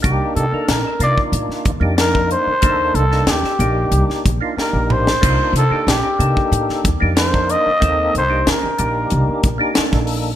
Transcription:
<<
  \new Staff \with { instrumentName = "Trumpet" } { \time 4/4 \key c \dorian \tempo 4 = 93 g'8 a'8 bes'8 d''8 r4 bes'8 c''8~ | c''8 a'8 g'4. r8 bes'8 c''8~ | c''8 a'8 g'4. r8 c''8 ees''8~ | ees''8 c''8 bes'4. r4. | }
  \new Staff \with { instrumentName = "Tonewheel organ" } { \time 4/4 \key c \dorian <bes d' ees' g'>8. <bes d' ees' bes'>8 <ees' a'>16 <bes d' ees' f'>4 r16 <bes d' ees' g'>16 <bes d' ees' bes'>8. r16 | <bes d' ees' a'>8. <bes d' ees' a'>8 <ees' a'>16 <bes d' ees' g'>4 r16 <bes d' ees' f'>16 <bes d' ees' g'>8. r16 | <bes d' ees' f'>8. <bes d' ees' g'>8 <ees' g'>16 <bes d' ees' a'>4 r16 <bes d' ees' g'>16 <bes d' ees' bes'>8. r16 | <bes c' ees' a'>8. <bes d' ees' g'>8 <ees' g'>16 <bes d' ees' g'>4 r16 <bes d' ees' g'>16 <bes d' ees' a'>8. r16 | }
  \new Staff \with { instrumentName = "Upright bass" } { \clef bass \time 4/4 \key c \dorian c,16 r16 c16 r16 bes,,16 r16 c16 r16 a,16 r16 ees,16 f,4 r16 | ees,8 c,8 ees,16 r16 bes,,8 c,16 r16 bes,,16 r8 bes,,8. | c,16 r16 c16 r16 bes,,16 r16 c16 r16 a,16 r16 ees,16 f,4 r16 | ees,8 c,8 ees,16 r16 bes,,8 c,16 r16 bes,,16 r8 bes,,8. | }
  \new DrumStaff \with { instrumentName = "Drums" } \drummode { \time 4/4 <hh bd>8 hh8 <hh sn>8 hh16 bd16 hh16 sn16 <hh bd>8 <hh sn>16 bd16 hh8 | <hh bd>8 hh16 sn16 <hh sn>16 sn16 hh8 hh16 sn16 <hh bd>8 sn8 toml16 sn16 | <cymc hh bd>8 hh8 <hh sn>8 hh16 bd16 hh16 sn16 <hh bd>8 <hh sn>16 bd16 hh8 | <hh bd>8 hh8 <hh sn>8 hh8 hh8 <hh bd>8 <hh sn>16 <bd sn>16 hho8 | }
>>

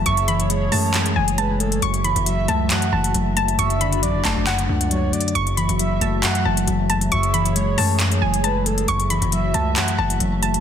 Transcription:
<<
  \new Staff \with { instrumentName = "Synth pluck" } { \time 4/4 \key fis \minor \tempo 4 = 136 cis'''8 b''4 a''8 r8 gis''8 a''8 r8 | cis'''8 b''4 a''4 a''4 a''8 | cis'''8 b''4 a''8 fis''2 | cis'''8 b''4 a''4 a''4 a''8 |
cis'''8 b''4 a''8 r8 gis''8 a''8 r8 | cis'''8 b''4 a''4 a''4 a''8 | }
  \new Staff \with { instrumentName = "Soft synth lead" } { \time 4/4 \key fis \minor e''4 cis''4 r4 b'8 a'8 | r4 e''4 fis''4 r4 | e''4 d''4 r4 cis''8 d''8 | r4 e''4 fis''4 r4 |
e''4 cis''4 r4 b'8 a'8 | r4 e''4 fis''4 r4 | }
  \new Staff \with { instrumentName = "Analog synth pad" } { \time 4/4 \key fis \minor << { <gis' cis''>1 | <fis' e''>1 | <fis' d''>1 | <fis' e''>1 |
<gis' cis''>1 | <fis' e''>1 | } \\ { fis1~ | fis1 | d'1 | fis1~ |
fis1~ | fis1 | } >> }
  \new Staff \with { instrumentName = "Synth keys" } { \clef bass \time 4/4 \key fis \minor fis,8 e8 gis8 a8 fis,8 e8 gis8 a8 | fis,8 e8 fis8 a8 fis,8 e8 fis8 a8 | fis,8 d8 fis8 a8 fis,8 d'8 fis8 a8 | fis,8 e8 fis8 a8 fis,8 e8 fis8 a8 |
fis,8 e8 gis8 a8 fis,8 e8 gis8 a8 | fis,8 e8 fis8 a8 fis,8 e8 fis8 a8 | }
  \new Staff \with { instrumentName = "808-style bass" } { \clef bass \time 4/4 \key fis \minor fis,,4. fis,4 fis,,4. | fis,,8. fis,,8. cis,8 r8 fis,,8 fis,,4 | fis,,4 a,,16 fis,,16 fis,,16 fis,,8. cis,4 r8 | fis,,8. fis,,8. fis,,8 r8 fis,,8 fis,,4 |
fis,,4. fis,4 fis,,4. | fis,,8. fis,,8. cis,8 r8 fis,,8 fis,,4 | }
  \new DrumStaff \with { instrumentName = "Drums" } \drummode { \time 4/4 hh16 hh16 hh16 hh16 hh8 hho8 <hc hh>16 hh8 hh16 hh8 hh16 hh16 | hh16 hh16 hh16 hh16 hh8 hh8 <hc hh>16 hh8 hh16 hh8 hh16 hh16 | hh16 hh16 hh16 hh16 hh8 <hc hh>8 <hc hh>16 hh8 hh16 \tuplet 3/2 { hh16 r16 r16 hh16 hh16 hh16 } | hh16 hh16 hh16 hh16 hh8 hh8 <hc hh>16 hh8 hh16 hh8 hh16 hh16 |
hh16 hh16 hh16 hh16 hh8 hho8 <hc hh>16 hh8 hh16 hh8 hh16 hh16 | hh16 hh16 hh16 hh16 hh8 hh8 <hc hh>16 hh8 hh16 hh8 hh16 hh16 | }
>>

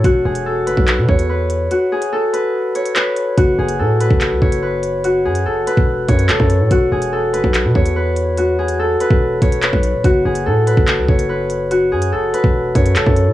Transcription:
<<
  \new Staff \with { instrumentName = "Harp" } { \time 4/4 \key fis \minor \tempo 4 = 144 fis'8 gis'8 a'8 b'8 r8 cis''8 b'4 | fis'8 gis'8 a'8 b'8 r8 cis''8 b'4 | fis'8 gis'8 a'8 b'8 r8 cis''8 b'4 | fis'8 gis'8 a'8 b'8 r8 cis''8 a'4 |
fis'8 gis'8 a'8 b'8 r8 cis''8 b'4 | fis'8 gis'8 a'8 b'8 r8 cis''8 b'4 | fis'8 gis'8 a'8 b'8 r8 cis''8 b'4 | fis'8 gis'8 a'8 b'8 r8 cis''8 a'4 | }
  \new Staff \with { instrumentName = "808-style bass" } { \clef bass \time 4/4 \key fis \minor e,,8 e,,4 fis,,16 b,,8 b,16 e,4. | r1 | fis,,8 fis,,8 a,8. fis,,8 cis,16 fis,,4.~ | fis,,8 fis,8 fis,,8 r16 e,,8. fis,8 e,,16 fis,8 a,16 |
e,,8 e,,4 fis,,16 b,,8 b,16 e,4.~ | e,4. r16 e,,8. e,,8. b,,8 d,,16 | fis,,8 fis,,8 a,8. fis,,8 cis,16 fis,,4.~ | fis,,8 fis,8 fis,,8 r16 e,,8. fis,8 e,,16 fis,8 a,16 | }
  \new DrumStaff \with { instrumentName = "Drums" } \drummode { \time 4/4 <hh bd>8. hh16 r8 hh16 bd16 <hc hh>8 bd16 hh16 r8 hh8 | hh8. hh16 r8 hh8 r8 hh16 hh16 <hc hh>8 hh8 | <hh bd>8. hh16 r8 hh16 bd16 <hc hh>8 bd16 hh16 r8 hh8 | hh8. hh16 r8 hh16 bd16 r8 <hh bd>16 hh16 <hc hh>16 bd16 hh8 |
<hh bd>8. hh16 r8 hh16 bd16 <hc hh>8 bd16 hh16 r8 hh8 | hh8. hh16 r8 hh16 bd16 r8 <hh bd>16 hh16 <hc hh>16 bd16 hh8 | <hh bd>8. hh16 r8 hh16 bd16 <hc hh>8 bd16 hh16 r8 hh8 | hh8. hh16 r8 hh16 bd16 r8 <hh bd>16 hh16 <hc hh>16 bd16 hh8 | }
>>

